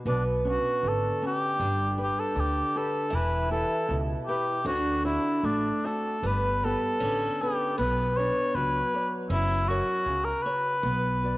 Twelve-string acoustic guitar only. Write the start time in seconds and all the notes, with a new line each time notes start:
0.06 B3
1.60 D4
3.10 E4
4.66 D4
6.23 B3
7.00 C#4
7.78 B3
9.30 C#4
10.83 B3